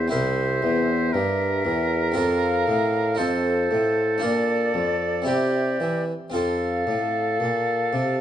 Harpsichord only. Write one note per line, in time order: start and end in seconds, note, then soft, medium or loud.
0.08 2.10 C4 soft
0.08 2.11 E4 medium
0.08 2.12 A#4 medium
0.12 0.59 C2 medium
0.63 1.10 E2 medium
1.14 1.61 G2 medium
1.65 2.12 E2 medium
2.12 3.14 C4 medium
2.12 3.15 F4 soft
2.12 3.15 A4 medium
2.17 2.64 F2 medium
2.68 3.15 A2 medium
3.15 4.17 D#4 medium
3.15 4.18 F4 medium
3.15 4.19 A4 medium
3.19 3.67 F2 medium
3.71 4.19 A2 medium
4.18 5.22 D4 medium
4.18 5.23 F4 medium
4.18 5.23 A#4 medium
4.23 4.71 A#2 medium
4.74 5.23 F2 medium
5.22 6.28 C4 soft
5.22 6.28 E4 soft
5.22 6.29 G4 soft
5.27 5.76 C3 medium
5.80 6.11 E3 medium
6.30 7.34 C4 soft
6.30 8.21 F4 soft
6.30 8.21 A4 soft
6.34 6.83 F2 soft
6.87 7.36 A2 medium
7.40 7.89 A#2 soft
7.93 8.21 C3 soft